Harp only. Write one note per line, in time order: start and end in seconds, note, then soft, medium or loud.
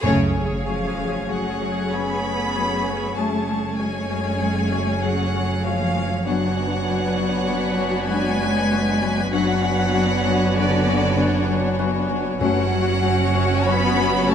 0.00 0.34 F#2 medium
0.00 0.38 F#3 soft
0.35 0.65 F#2 soft
0.66 0.96 F#2 soft
0.98 1.59 F#2 medium
1.29 4.40 F#3 soft
1.61 1.91 F#2 medium
1.92 2.23 F#2 soft
2.24 2.54 F#2 soft
2.55 2.85 F#2 medium
2.86 3.15 F#2 soft
3.17 3.47 F#2 medium
3.49 3.78 F#2 soft
3.79 4.09 F#2 soft
4.10 4.71 F#2 medium
4.41 7.47 F#3 soft
4.72 5.01 F#2 medium
5.03 5.33 F#2 soft
5.34 5.63 F#2 soft
5.64 5.94 F#2 medium
5.95 6.25 F#2 soft
6.26 6.55 F#2 medium
6.57 6.86 F#2 soft
6.87 7.16 F#2 soft
7.17 7.77 F#2 medium
7.48 10.56 F#3 soft
7.78 8.07 F#2 medium
8.09 8.38 F#2 soft
8.40 8.70 F#2 soft
8.71 9.01 F#2 medium
9.02 9.31 F#2 soft
9.33 9.63 F#2 medium
9.64 9.93 F#2 medium
9.95 10.25 F#2 soft
10.26 10.87 F#2 medium
10.57 13.64 F#3 medium
10.88 11.16 F#2 medium
11.18 11.47 F#2 medium
11.48 11.78 F#2 medium
11.79 12.08 F#2 medium
12.09 12.40 F#2 medium
12.41 12.71 F#2 medium
12.72 13.01 F#2 medium
13.02 13.33 F#2 medium
13.35 13.96 F#2 medium
13.65 14.35 F#3 medium
13.97 14.27 F#2 medium
14.28 14.35 F#2 medium